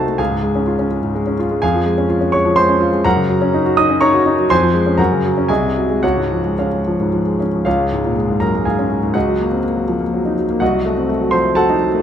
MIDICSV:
0, 0, Header, 1, 2, 480
1, 0, Start_track
1, 0, Key_signature, -5, "major"
1, 0, Tempo, 479616
1, 190, Time_signature, 3, 2, 24, 8
1, 4991, Tempo, 518135
1, 5951, Tempo, 543478
1, 7391, Tempo, 493827
1, 9791, Tempo, 480384
1, 11690, End_track
2, 0, Start_track
2, 0, Title_t, "Grand piano"
2, 0, Program_c, 0, 0
2, 0, Control_c, 0, 64, 127
2, 0, Note_on_c, 0, 36, 49
2, 0, Note_on_c, 0, 48, 38
2, 0, Note_on_c, 0, 57, 44
2, 0, Note_on_c, 0, 63, 39
2, 0, Note_on_c, 0, 66, 45
2, 0, Note_on_c, 0, 69, 48
2, 0, Note_on_c, 0, 72, 52
2, 0, Note_on_c, 0, 75, 47
2, 0, Note_on_c, 0, 78, 48
2, 0, Note_on_c, 0, 81, 70
2, 0, Note_on_c, 0, 84, 67
2, 77, Note_off_c, 0, 57, 0
2, 77, Note_on_c, 0, 57, 41
2, 145, Note_off_c, 0, 66, 0
2, 147, Note_off_c, 0, 36, 0
2, 164, Note_off_c, 0, 69, 0
2, 165, Note_off_c, 0, 78, 0
2, 182, Note_on_c, 0, 80, 63
2, 188, Note_on_c, 0, 37, 51
2, 190, Note_off_c, 0, 81, 0
2, 194, Note_off_c, 0, 57, 0
2, 194, Note_on_c, 0, 77, 46
2, 195, Note_on_c, 0, 68, 47
2, 208, Control_c, 0, 64, 0
2, 211, Note_off_c, 0, 75, 0
2, 214, Note_off_c, 0, 48, 0
2, 214, Note_off_c, 0, 72, 0
2, 216, Note_off_c, 0, 84, 0
2, 218, Note_off_c, 0, 63, 0
2, 309, Note_on_c, 0, 44, 42
2, 346, Control_c, 0, 64, 127
2, 432, Note_on_c, 0, 56, 42
2, 502, Note_off_c, 0, 44, 0
2, 555, Note_on_c, 0, 61, 44
2, 623, Note_off_c, 0, 56, 0
2, 669, Note_on_c, 0, 65, 46
2, 745, Note_off_c, 0, 61, 0
2, 791, Note_on_c, 0, 61, 43
2, 862, Note_off_c, 0, 65, 0
2, 911, Note_on_c, 0, 56, 45
2, 983, Note_off_c, 0, 61, 0
2, 1025, Note_on_c, 0, 44, 43
2, 1103, Note_off_c, 0, 56, 0
2, 1151, Note_on_c, 0, 56, 50
2, 1219, Note_off_c, 0, 44, 0
2, 1271, Note_on_c, 0, 61, 45
2, 1341, Note_off_c, 0, 56, 0
2, 1350, Note_off_c, 0, 68, 0
2, 1350, Note_off_c, 0, 77, 0
2, 1384, Note_off_c, 0, 80, 0
2, 1393, Note_on_c, 0, 65, 53
2, 1461, Note_off_c, 0, 61, 0
2, 1511, Note_on_c, 0, 56, 46
2, 1582, Note_off_c, 0, 65, 0
2, 1586, Note_off_c, 0, 37, 0
2, 1619, Note_on_c, 0, 80, 72
2, 1629, Note_off_c, 0, 56, 0
2, 1631, Note_on_c, 0, 41, 56
2, 1631, Note_on_c, 0, 77, 56
2, 1635, Note_on_c, 0, 68, 54
2, 1642, Control_c, 0, 64, 0
2, 1750, Note_on_c, 0, 53, 49
2, 1785, Control_c, 0, 64, 127
2, 1860, Note_on_c, 0, 56, 47
2, 1939, Note_off_c, 0, 53, 0
2, 1980, Note_on_c, 0, 61, 47
2, 2054, Note_off_c, 0, 56, 0
2, 2097, Note_on_c, 0, 65, 50
2, 2173, Note_off_c, 0, 61, 0
2, 2211, Note_on_c, 0, 61, 47
2, 2291, Note_off_c, 0, 65, 0
2, 2304, Note_off_c, 0, 77, 0
2, 2306, Note_off_c, 0, 68, 0
2, 2324, Note_on_c, 0, 85, 75
2, 2335, Note_on_c, 0, 56, 49
2, 2337, Note_on_c, 0, 73, 55
2, 2338, Note_off_c, 0, 80, 0
2, 2407, Note_off_c, 0, 61, 0
2, 2454, Note_on_c, 0, 53, 50
2, 2528, Note_off_c, 0, 56, 0
2, 2560, Note_off_c, 0, 73, 0
2, 2560, Note_on_c, 0, 84, 86
2, 2566, Note_on_c, 0, 56, 53
2, 2570, Note_off_c, 0, 85, 0
2, 2572, Note_on_c, 0, 72, 61
2, 2647, Note_off_c, 0, 53, 0
2, 2692, Note_on_c, 0, 61, 47
2, 2762, Note_off_c, 0, 56, 0
2, 2809, Note_on_c, 0, 65, 55
2, 2885, Note_off_c, 0, 61, 0
2, 2928, Note_on_c, 0, 56, 48
2, 3003, Note_off_c, 0, 65, 0
2, 3016, Note_off_c, 0, 41, 0
2, 3017, Note_off_c, 0, 72, 0
2, 3045, Note_off_c, 0, 84, 0
2, 3047, Note_on_c, 0, 82, 84
2, 3051, Note_off_c, 0, 56, 0
2, 3053, Note_on_c, 0, 42, 64
2, 3057, Note_on_c, 0, 70, 55
2, 3059, Note_on_c, 0, 78, 63
2, 3072, Control_c, 0, 64, 0
2, 3168, Note_on_c, 0, 49, 48
2, 3210, Control_c, 0, 64, 127
2, 3293, Note_on_c, 0, 54, 52
2, 3363, Note_off_c, 0, 49, 0
2, 3420, Note_on_c, 0, 61, 55
2, 3486, Note_off_c, 0, 54, 0
2, 3543, Note_on_c, 0, 63, 54
2, 3609, Note_off_c, 0, 61, 0
2, 3661, Note_on_c, 0, 66, 53
2, 3731, Note_off_c, 0, 63, 0
2, 3736, Note_off_c, 0, 70, 0
2, 3737, Note_off_c, 0, 78, 0
2, 3771, Note_off_c, 0, 82, 0
2, 3774, Note_on_c, 0, 87, 82
2, 3781, Note_on_c, 0, 63, 51
2, 3784, Note_on_c, 0, 75, 64
2, 3851, Note_off_c, 0, 66, 0
2, 3900, Note_on_c, 0, 61, 50
2, 3973, Note_off_c, 0, 63, 0
2, 4006, Note_off_c, 0, 75, 0
2, 4009, Note_on_c, 0, 85, 83
2, 4014, Note_on_c, 0, 63, 59
2, 4016, Note_on_c, 0, 82, 67
2, 4018, Note_off_c, 0, 87, 0
2, 4021, Note_on_c, 0, 73, 66
2, 4094, Note_off_c, 0, 61, 0
2, 4142, Note_on_c, 0, 66, 51
2, 4212, Note_off_c, 0, 63, 0
2, 4264, Note_on_c, 0, 63, 51
2, 4337, Note_off_c, 0, 66, 0
2, 4392, Note_on_c, 0, 54, 49
2, 4458, Note_off_c, 0, 63, 0
2, 4466, Note_off_c, 0, 42, 0
2, 4471, Note_off_c, 0, 82, 0
2, 4474, Note_off_c, 0, 73, 0
2, 4502, Note_off_c, 0, 85, 0
2, 4505, Note_on_c, 0, 84, 89
2, 4510, Note_off_c, 0, 54, 0
2, 4513, Note_on_c, 0, 41, 63
2, 4513, Note_on_c, 0, 80, 67
2, 4514, Note_on_c, 0, 72, 68
2, 4522, Control_c, 0, 64, 0
2, 4635, Note_on_c, 0, 53, 54
2, 4671, Control_c, 0, 64, 127
2, 4741, Note_on_c, 0, 56, 51
2, 4824, Note_off_c, 0, 53, 0
2, 4868, Note_on_c, 0, 61, 50
2, 4940, Note_off_c, 0, 56, 0
2, 4961, Note_off_c, 0, 80, 0
2, 4962, Note_off_c, 0, 72, 0
2, 4979, Note_on_c, 0, 82, 66
2, 4981, Note_off_c, 0, 41, 0
2, 4990, Note_on_c, 0, 42, 65
2, 4991, Note_off_c, 0, 84, 0
2, 4992, Note_off_c, 0, 61, 0
2, 4992, Note_on_c, 0, 70, 48
2, 4996, Note_on_c, 0, 78, 50
2, 5007, Control_c, 0, 64, 0
2, 5115, Note_on_c, 0, 49, 45
2, 5176, Control_c, 0, 64, 127
2, 5230, Note_on_c, 0, 54, 49
2, 5299, Note_off_c, 0, 49, 0
2, 5352, Note_on_c, 0, 61, 50
2, 5416, Note_off_c, 0, 54, 0
2, 5428, Note_off_c, 0, 70, 0
2, 5430, Note_off_c, 0, 78, 0
2, 5446, Note_off_c, 0, 42, 0
2, 5452, Note_on_c, 0, 80, 64
2, 5455, Note_off_c, 0, 82, 0
2, 5461, Note_on_c, 0, 36, 62
2, 5464, Note_on_c, 0, 68, 53
2, 5465, Note_off_c, 0, 61, 0
2, 5465, Note_on_c, 0, 75, 51
2, 5478, Control_c, 0, 64, 0
2, 5582, Note_on_c, 0, 48, 40
2, 5621, Control_c, 0, 64, 127
2, 5712, Note_on_c, 0, 54, 41
2, 5776, Note_off_c, 0, 48, 0
2, 5833, Note_on_c, 0, 56, 42
2, 5906, Note_off_c, 0, 54, 0
2, 5919, Note_off_c, 0, 68, 0
2, 5920, Note_off_c, 0, 75, 0
2, 5937, Note_off_c, 0, 36, 0
2, 5947, Note_off_c, 0, 80, 0
2, 5954, Note_on_c, 0, 78, 70
2, 5956, Note_off_c, 0, 56, 0
2, 5962, Note_on_c, 0, 37, 54
2, 5965, Note_on_c, 0, 66, 50
2, 5965, Note_on_c, 0, 73, 51
2, 5970, Control_c, 0, 64, 0
2, 6085, Note_on_c, 0, 44, 37
2, 6108, Control_c, 0, 64, 127
2, 6207, Note_on_c, 0, 53, 41
2, 6274, Note_off_c, 0, 44, 0
2, 6335, Note_on_c, 0, 56, 41
2, 6395, Note_off_c, 0, 53, 0
2, 6411, Note_off_c, 0, 66, 0
2, 6411, Note_off_c, 0, 73, 0
2, 6439, Note_off_c, 0, 78, 0
2, 6447, Note_on_c, 0, 77, 44
2, 6451, Note_on_c, 0, 61, 38
2, 6453, Note_on_c, 0, 65, 33
2, 6457, Note_on_c, 0, 73, 37
2, 6519, Note_off_c, 0, 56, 0
2, 6580, Note_on_c, 0, 56, 37
2, 6638, Note_off_c, 0, 61, 0
2, 6703, Note_on_c, 0, 53, 41
2, 6764, Note_off_c, 0, 56, 0
2, 6818, Note_on_c, 0, 44, 37
2, 6885, Note_off_c, 0, 53, 0
2, 6931, Note_on_c, 0, 53, 43
2, 7002, Note_off_c, 0, 44, 0
2, 7050, Note_on_c, 0, 56, 39
2, 7118, Note_off_c, 0, 53, 0
2, 7134, Note_off_c, 0, 65, 0
2, 7135, Note_off_c, 0, 73, 0
2, 7166, Note_off_c, 0, 77, 0
2, 7169, Note_on_c, 0, 61, 40
2, 7237, Note_off_c, 0, 56, 0
2, 7291, Note_on_c, 0, 53, 38
2, 7351, Note_off_c, 0, 61, 0
2, 7362, Note_off_c, 0, 37, 0
2, 7387, Note_on_c, 0, 77, 61
2, 7396, Note_on_c, 0, 73, 45
2, 7398, Note_on_c, 0, 37, 54
2, 7399, Note_off_c, 0, 53, 0
2, 7399, Note_on_c, 0, 65, 44
2, 7409, Control_c, 0, 64, 0
2, 7525, Note_on_c, 0, 56, 41
2, 7580, Control_c, 0, 64, 127
2, 7654, Note_on_c, 0, 44, 40
2, 7715, Note_off_c, 0, 56, 0
2, 7774, Note_on_c, 0, 46, 39
2, 7840, Note_off_c, 0, 44, 0
2, 7888, Note_off_c, 0, 46, 0
2, 7894, Note_on_c, 0, 56, 44
2, 8018, Note_on_c, 0, 44, 44
2, 8081, Note_off_c, 0, 56, 0
2, 8086, Note_off_c, 0, 73, 0
2, 8088, Note_off_c, 0, 65, 0
2, 8117, Note_on_c, 0, 82, 65
2, 8120, Note_off_c, 0, 77, 0
2, 8127, Note_on_c, 0, 42, 40
2, 8128, Note_on_c, 0, 70, 51
2, 8205, Note_off_c, 0, 44, 0
2, 8247, Note_off_c, 0, 42, 0
2, 8256, Note_on_c, 0, 56, 41
2, 8352, Note_off_c, 0, 70, 0
2, 8363, Note_off_c, 0, 82, 0
2, 8364, Note_on_c, 0, 80, 55
2, 8373, Note_on_c, 0, 44, 44
2, 8375, Note_on_c, 0, 77, 43
2, 8376, Note_on_c, 0, 68, 43
2, 8444, Note_off_c, 0, 56, 0
2, 8494, Note_on_c, 0, 61, 41
2, 8561, Note_off_c, 0, 44, 0
2, 8614, Note_on_c, 0, 56, 42
2, 8680, Note_off_c, 0, 61, 0
2, 8729, Note_on_c, 0, 44, 43
2, 8798, Note_off_c, 0, 56, 0
2, 8805, Note_off_c, 0, 37, 0
2, 8813, Note_off_c, 0, 68, 0
2, 8813, Note_off_c, 0, 77, 0
2, 8833, Note_on_c, 0, 78, 57
2, 8840, Note_off_c, 0, 80, 0
2, 8844, Note_off_c, 0, 44, 0
2, 8844, Note_on_c, 0, 37, 47
2, 8845, Note_on_c, 0, 66, 46
2, 8848, Note_on_c, 0, 75, 44
2, 8861, Control_c, 0, 64, 0
2, 8972, Note_on_c, 0, 54, 42
2, 9023, Control_c, 0, 64, 127
2, 9085, Note_on_c, 0, 58, 46
2, 9155, Note_off_c, 0, 54, 0
2, 9201, Note_on_c, 0, 60, 36
2, 9271, Note_off_c, 0, 58, 0
2, 9318, Note_off_c, 0, 60, 0
2, 9319, Note_on_c, 0, 58, 41
2, 9437, Note_on_c, 0, 54, 40
2, 9508, Note_off_c, 0, 58, 0
2, 9557, Note_on_c, 0, 53, 39
2, 9627, Note_off_c, 0, 54, 0
2, 9673, Note_on_c, 0, 58, 39
2, 9675, Note_off_c, 0, 53, 0
2, 9804, Note_on_c, 0, 54, 47
2, 9865, Note_off_c, 0, 58, 0
2, 9919, Note_on_c, 0, 63, 42
2, 9992, Note_off_c, 0, 54, 0
2, 9997, Note_off_c, 0, 66, 0
2, 9998, Note_off_c, 0, 75, 0
2, 10030, Note_off_c, 0, 78, 0
2, 10045, Note_on_c, 0, 54, 46
2, 10110, Note_off_c, 0, 63, 0
2, 10168, Note_on_c, 0, 58, 46
2, 10233, Note_off_c, 0, 54, 0
2, 10238, Note_off_c, 0, 37, 0
2, 10268, Note_on_c, 0, 78, 62
2, 10279, Note_on_c, 0, 36, 54
2, 10283, Note_off_c, 0, 58, 0
2, 10284, Note_on_c, 0, 75, 51
2, 10285, Note_on_c, 0, 66, 49
2, 10292, Control_c, 0, 64, 0
2, 10399, Note_on_c, 0, 54, 45
2, 10435, Control_c, 0, 64, 127
2, 10522, Note_on_c, 0, 57, 44
2, 10589, Note_off_c, 0, 54, 0
2, 10641, Note_on_c, 0, 60, 37
2, 10710, Note_off_c, 0, 57, 0
2, 10757, Note_off_c, 0, 60, 0
2, 10759, Note_on_c, 0, 57, 44
2, 10876, Note_on_c, 0, 54, 45
2, 10945, Note_off_c, 0, 57, 0
2, 10954, Note_off_c, 0, 66, 0
2, 10954, Note_off_c, 0, 75, 0
2, 10977, Note_on_c, 0, 84, 72
2, 10986, Note_off_c, 0, 78, 0
2, 10988, Note_on_c, 0, 53, 38
2, 10988, Note_on_c, 0, 72, 54
2, 11063, Note_off_c, 0, 54, 0
2, 11107, Note_off_c, 0, 53, 0
2, 11112, Note_on_c, 0, 57, 44
2, 11210, Note_off_c, 0, 72, 0
2, 11220, Note_on_c, 0, 81, 74
2, 11221, Note_off_c, 0, 84, 0
2, 11230, Note_on_c, 0, 54, 49
2, 11233, Note_on_c, 0, 69, 52
2, 11233, Note_on_c, 0, 78, 57
2, 11302, Note_off_c, 0, 57, 0
2, 11358, Note_on_c, 0, 63, 45
2, 11422, Note_off_c, 0, 54, 0
2, 11483, Note_on_c, 0, 54, 45
2, 11547, Note_off_c, 0, 63, 0
2, 11613, Note_on_c, 0, 57, 48
2, 11670, Note_off_c, 0, 54, 0
2, 11673, Note_off_c, 0, 36, 0
2, 11681, Note_off_c, 0, 69, 0
2, 11681, Note_off_c, 0, 78, 0
2, 11690, Note_off_c, 0, 57, 0
2, 11690, Note_off_c, 0, 81, 0
2, 11690, End_track
0, 0, End_of_file